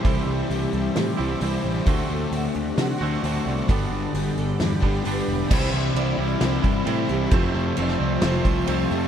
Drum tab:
CC |----------------|----------------|----------------|x---x---x---x---|
HH |o---o---o---o---|o---o---o---o---|o---o---o---o---|----------------|
SD |--------o-------|--------o-------|--------o-------|--------o-------|
BD |o---------------|o---------------|o---------o-----|o---------o-----|

CC |x---x---x---x---|
HH |----------------|
SD |-----o--o-------|
BD |o---------o-----|